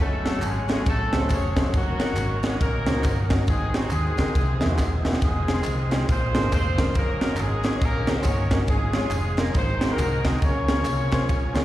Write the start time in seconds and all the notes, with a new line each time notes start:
Already playing: C#4
0.00 F#1 F#3 A3 C#4 F#4 A4
0.25 A3 C#4 F#4 G#4 A4, snare, ride bell, tambourine
0.42 G#1 G#3 G#4, clap, ride bell, tambourine
0.68 G#3 A3 C#4 F#4 G#4 A4, snare, ride bell, tambourine
0.86 A1 A3 C#4 A4, kick, ride bell, tambourine
1.13 C#2 A3 C#4 F#4 G#4 C5, snare, ride bell, tambourine
1.21 A3 C#4 F#4 G#4 C5
1.29 F1 C#4 G#4 A4 C#5, kick, clap, ride bell, tambourine
1.56 A3 C#4 F#4 G#4 C5, kick, snare, ride bell, tambourine
1.74 F#1 D#3 F#3 A#3 C#4 F#4, kick, ride bell, tambourine
2.00 A#3 C#4 D#4 F#4 A#4, snare, ride bell, tambourine
2.16 G#1, clap, ride bell, tambourine
2.43 G#3 A#3 C#4 D#4 F#4 G#4 C#5, snare, ride bell, tambourine
2.60 A#1 A#3 C#4 D#4 A#4, kick, ride bell, tambourine
2.87 C#2 A#3 C#4 D#4 F#4 C5, snare, ride bell, tambourine
2.95 A#3 C#4 D#4 F#4 C5
3.04 G1, kick, clap, ride bell, tambourine
3.30 A#3 C#4 D#4 F#4 A#4, kick, snare, ride bell, tambourine
3.47 G#1 G#2 G#3 C4 D#4 F#4 G#4, kick, ride bell, tambourine
3.74 F#3 G#3 C4 D#4 F#4 G#4, snare, ride bell, tambourine
3.90 D#2 G#3 C4 D#4 G#4, clap, ride bell, tambourine
4.17 C#2 G#3 C4 D#4 F#4 A#4, kick, snare, ride bell, tambourine
4.35 C2 C3 E3 A#3 G#4, kick, ride bell, tambourine
4.61 E2 A#3 C4 D#4 E4 G#4, snare, ride bell, tambourine
4.69 A#3 C4 D#4 E4 F#4
4.78 E1, kick, snare, clap, tambourine
5.04 A#3 C4 D#4 E4 F#4, snare, tambourine
5.13 snare
5.21 F1 D#3 G#3 C4 D#4 F4 G#4, kick, ride bell, tambourine
5.48 G#3 C4 D#4 F4 G#4, snare, ride bell, tambourine
5.64 C2, clap, ride bell, tambourine
5.91 G#3 C4 D#4 F4 G#4, snare, ride bell, tambourine
6.09 A#1 A#2 D3 A#3 C4 F4 G#4 C5, kick, ride bell, tambourine
6.35 G#1 G#3 A#3 D4 F4 G#4, snare, ride bell, tambourine
6.43 G#3 A#3 D4 F4 G#4
6.52 F1 C4 F4 G#4 C5, kick, clap, ride bell, tambourine
6.78 G#3 A#3 D4 F4 A#4, kick, snare, ride bell, tambourine
6.94 F#1 D#3 A#3 C#4 D#4 F#4 A#4, kick, ride bell, tambourine
7.21 A#3 C#4 D#4 F#4 A#4, snare, ride bell, tambourine
7.36 G#1 C#4 D#4, clap, ride bell, tambourine
7.41 G#3 G#4
7.63 A#3 C#4 D#4 F#4 C#5, snare, ride bell, tambourine
7.81 A#1 A#3 C#4 D#4 A#4, kick, ride bell, tambourine
8.07 C#2 A#3 C4 C#4 D#4 F#4 G#4 C5, snare, ride bell, tambourine
8.16 A#3 C#4 D#4 F#4 A#4
8.23 G1 C#4 A#4 C#5, kick, clap, ride bell, tambourine
8.51 A#3 C#4 D#4 F#4 A#4, kick, snare, ride bell, tambourine
8.67 G#1 G#2 F3 G#3 C#4 F4 G#4, kick, ride bell, tambourine
8.93 G#3 C#4 F4 G#4 C#5, snare, ride bell, tambourine
9.11 F1, clap, ride bell, tambourine
9.37 G#3 A#3 C#4 F4 G#4 A#4, snare, ride bell, tambourine
9.54 G#1 G#2 D#3 C4 D#4 F#4 C5, kick, ride bell, tambourine
9.81 C4 D#4 F#4 G#4 C5, snare, ride bell, tambourine
9.90 A#3 C4 D#4 F#4 G#4 A#4
9.99 C2, kick, clap, ride bell, tambourine
10.24 G#3 C4 D#4 F#4 G#4 D#5, kick, snare, ride bell, tambourine
10.41 C#2 C#3 F3 A#3 C#4 F4 G#4 A#4 C#5, kick, ride bell, tambourine
10.68 A#3 C#4 F4 G#4 A#4, snare, ride bell, tambourine
10.85 C2, clap, ride bell, tambourine
11.12 A#3 C#4 F4 G#4 C5, kick, snare, ride bell, tambourine
11.29 A#1, kick, ride bell, tambourine
11.54 C#2 A#3 C#4 F4 G#4 C#5, snare, ride bell, tambourine